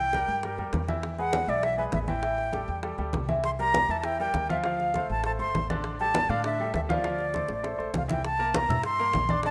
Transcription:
Already playing: upright bass C2, flute G5
0.13 grand piano G3 G4 A#4, high bongo, high conga
0.28 upright bass G2, high bongo, high conga
0.43 grand piano G3 G4 A#4, high bongo, high conga
0.58 upright bass F2, grand piano G3 G4 A#4, high bongo, high conga
0.73 upright bass E2, high bongo, low bongo, high conga
0.88 grand piano E3 E4 E5, high conga
1.03 high bongo, high conga
1.18 grand piano G#3 G#4 B4, flute F#5, high conga
1.33 high bongo, high conga
1.48 upright bass B1, grand piano E3 E4 E5, flute D5, high conga
1.63 grand piano E3 E4 E5, flute E5, high bongo, high conga
1.78 grand piano G#3 G#4 B4, flute E5, high conga
1.92 upright bass A1, flute E5, high bongo, low bongo, high conga
2.08 grand piano E3 E4 E5, flute G5, high conga
2.23 grand piano E3 E4 E5, high bongo, high conga
2.38 high bongo, high conga
2.53 grand piano G3 G4 A4, high bongo, high conga
2.68 upright bass E2, high bongo, high conga
2.83 grand piano G3 G4 A4, high bongo, high conga
2.98 upright bass D2, grand piano G3 G4 A4, high bongo, high conga
3.13 upright bass C2, high bongo, low bongo, high conga
3.29 grand piano E3 E4 E5, high conga
3.44 flute C6, high bongo, high conga
3.59 grand piano G3 G4 A#4, flute A#5, high conga
3.74 high bongo, high conga
3.88 upright bass E2, grand piano E3 E4 E5, flute A5, high conga
4.00 flute A5, high bongo
4.04 grand piano E3 E4 E5, flute G5, high conga
4.20 grand piano G3 G4 A#4, flute G5, high conga
4.34 upright bass D2, high bongo, low bongo, high conga
4.49 grand piano F3 F4 F5, flute E5, high conga
4.64 grand piano F3 F4 F5, flute F5, high bongo, high conga
4.79 high bongo, high conga
4.94 grand piano A3 A4 C5, high bongo, high conga
5.09 upright bass A1, flute A5, high bongo, high conga
5.24 grand piano A3 A4 C5, flute A5, high bongo, high conga
5.39 upright bass G1, grand piano A3 A4 C5, flute C6, high bongo, high conga
5.54 upright bass A1, high bongo, low bongo, high conga
5.70 grand piano D3 D4 D5, high conga
5.84 high bongo, high conga
5.99 grand piano G3 G4 A4, flute A5, high conga
6.14 high bongo, high conga
6.29 upright bass A2, grand piano D3 D4 D5, flute F5, high conga
6.44 grand piano D3 D4 D5, flute E5, high bongo, high conga
6.60 grand piano G3 G4 A4, high conga
6.74 upright bass D2, flute E5, high bongo, low bongo, high conga
6.89 grand piano F3 F4 F5, flute D5, high conga
7.04 grand piano F3 F4 F5, high bongo, high conga
7.19 high bongo, high conga
7.33 grand piano A3 A4 C5, high bongo, high conga
7.48 upright bass A1, high bongo, high conga
7.63 grand piano A3 A4 C5, high bongo, high conga
7.78 upright bass A#1, grand piano A3 A4 C5, high conga
7.94 upright bass C2, flute F5, low bongo, high conga
8.08 grand piano E3 E4 E5, flute G5, low bongo, high conga
8.25 flute A5, high bongo, high conga
8.39 grand piano A#3 A#4 A#5, high bongo, high conga
8.54 flute A#5, high bongo, high conga
8.69 upright bass G2, grand piano E4 E5 E6, high bongo, high conga, low conga
8.84 flute C6, high bongo, high conga
8.99 grand piano A#3 A#4 A#5, high conga
9.13 upright bass A#1, high bongo, low bongo, high conga
9.29 grand piano D4 D5 D6, high bongo, high conga
9.43 grand piano D3 D4 D5, flute A5, high bongo, high conga

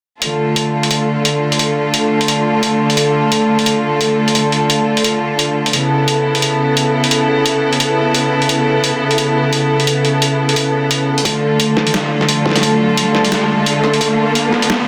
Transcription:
0.22 string section D3 A3 F4 A4, closed hi-hat
0.56 closed hi-hat
0.83 closed hi-hat
0.91 closed hi-hat
1.25 closed hi-hat
1.52 closed hi-hat
1.59 closed hi-hat
1.94 closed hi-hat
2.21 closed hi-hat
2.28 closed hi-hat
2.63 closed hi-hat
2.90 closed hi-hat
2.97 closed hi-hat
3.32 closed hi-hat
3.59 closed hi-hat
3.66 closed hi-hat
4.01 closed hi-hat
4.28 closed hi-hat
4.35 closed hi-hat
4.52 closed hi-hat
4.70 closed hi-hat
4.97 closed hi-hat
5.04 closed hi-hat
5.39 closed hi-hat
5.66 closed hi-hat
5.73 string section C#3 B3 E4 A4, closed hi-hat
6.08 closed hi-hat
6.35 closed hi-hat
6.42 closed hi-hat
6.77 closed hi-hat
7.04 closed hi-hat
7.11 closed hi-hat
7.46 closed hi-hat
7.73 closed hi-hat
7.80 closed hi-hat
8.14 closed hi-hat
8.42 closed hi-hat
8.49 closed hi-hat
8.84 closed hi-hat
9.11 closed hi-hat
9.18 closed hi-hat
9.53 closed hi-hat
9.80 closed hi-hat
9.87 closed hi-hat
10.05 closed hi-hat
10.22 closed hi-hat
10.49 closed hi-hat
10.56 closed hi-hat
10.91 closed hi-hat
11.18 closed hi-hat
11.25 string section D3 A3 F4 A4, kick, closed hi-hat, riser
11.60 closed hi-hat
11.77 kick, snare
11.87 closed hi-hat
11.94 snare, closed hi-hat
12.21 snare
12.29 closed hi-hat
12.46 kick, snare
12.49 snare
12.52 snare
12.56 snare, closed hi-hat
12.57 snare
12.60 kick, snare, closed hi-hat
12.97 closed hi-hat
13.15 snare
13.25 closed hi-hat
13.32 snare, closed hi-hat
13.66 closed hi-hat
13.84 snare
13.94 closed hi-hat
14.01 kick, closed hi-hat
14.35 closed hi-hat
14.52 kick, snare
14.62 closed hi-hat
14.70 snare

